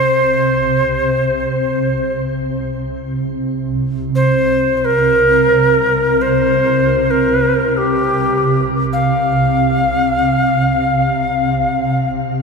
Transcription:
Already playing: C2 C3 C5 A#6
4.15 C5
4.77 C5
4.85 A#4
6.21 C5
7.11 A#4
7.77 G4
8.93 F5

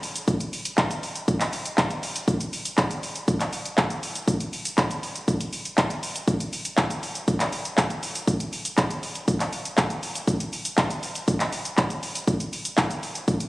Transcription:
0.03 open hi-hat, shaker
0.16 closed hi-hat, shaker
0.28 kick, shaker
0.40 closed hi-hat, shaker
0.53 open hi-hat, shaker
0.65 closed hi-hat, shaker
0.78 kick, clap, shaker
0.91 closed hi-hat, shaker
1.03 open hi-hat, shaker
1.15 closed hi-hat, shaker
1.28 kick, shaker
1.40 clap, closed hi-hat, shaker
1.53 open hi-hat, shaker
1.66 closed hi-hat, shaker
1.78 kick, clap, shaker
1.90 closed hi-hat, shaker
2.03 open hi-hat, shaker
2.16 closed hi-hat, shaker
2.28 kick, shaker
2.40 closed hi-hat, shaker
2.53 open hi-hat, shaker
2.65 closed hi-hat, shaker
2.78 kick, clap, shaker
2.91 closed hi-hat, shaker
3.03 open hi-hat, shaker
3.16 closed hi-hat, shaker
3.28 kick, shaker
3.40 clap, closed hi-hat, shaker
3.53 open hi-hat, shaker
3.65 closed hi-hat, shaker
3.78 kick, clap, shaker
3.90 closed hi-hat, shaker
4.03 open hi-hat, shaker
4.15 closed hi-hat, shaker
4.28 kick, shaker
4.40 closed hi-hat, shaker
4.53 open hi-hat, shaker
4.65 closed hi-hat, shaker
4.78 kick, clap, shaker
4.91 closed hi-hat, shaker
5.03 open hi-hat, shaker
5.16 closed hi-hat, shaker
5.28 kick, shaker
5.41 closed hi-hat, shaker
5.53 open hi-hat, shaker
5.65 closed hi-hat, shaker
5.78 kick, clap, shaker
5.90 closed hi-hat, shaker
6.03 open hi-hat, shaker
6.16 closed hi-hat, shaker
6.28 kick, shaker
6.40 closed hi-hat, shaker
6.53 open hi-hat, shaker
6.65 closed hi-hat, shaker
6.78 kick, clap, shaker
6.90 closed hi-hat, shaker
7.03 open hi-hat, shaker
7.15 closed hi-hat, shaker
7.28 kick, shaker
7.40 clap, closed hi-hat, shaker
7.52 open hi-hat, shaker
7.65 closed hi-hat, shaker
7.78 kick, clap, shaker
7.90 closed hi-hat, shaker
8.03 open hi-hat, shaker
8.15 closed hi-hat, shaker
8.28 kick, shaker
8.40 closed hi-hat, shaker
8.53 open hi-hat, shaker
8.65 closed hi-hat, shaker
8.78 kick, clap, shaker
8.91 closed hi-hat, shaker
9.03 open hi-hat, shaker
9.15 closed hi-hat, shaker
9.28 kick, shaker
9.40 clap, closed hi-hat, shaker
9.53 open hi-hat, shaker
9.65 closed hi-hat, shaker
9.78 kick, clap, shaker
9.90 closed hi-hat, shaker
10.03 open hi-hat, shaker
10.15 closed hi-hat, shaker
10.28 kick, shaker
10.40 closed hi-hat, shaker
10.53 open hi-hat, shaker
10.65 closed hi-hat, shaker
10.78 kick, clap, shaker
10.90 closed hi-hat, shaker
11.03 open hi-hat, shaker
11.15 closed hi-hat, shaker
11.28 kick, shaker
11.40 clap, closed hi-hat, shaker
11.52 open hi-hat, shaker
11.65 closed hi-hat, shaker
11.78 kick, clap, shaker
11.90 closed hi-hat, shaker
12.03 open hi-hat, shaker
12.15 closed hi-hat, shaker
12.28 kick, shaker
12.40 closed hi-hat, shaker
12.53 open hi-hat, shaker
12.65 closed hi-hat, shaker
12.78 kick, clap, shaker
12.91 closed hi-hat, shaker
13.03 open hi-hat, shaker
13.15 closed hi-hat, shaker
13.28 kick, shaker
13.40 closed hi-hat, shaker

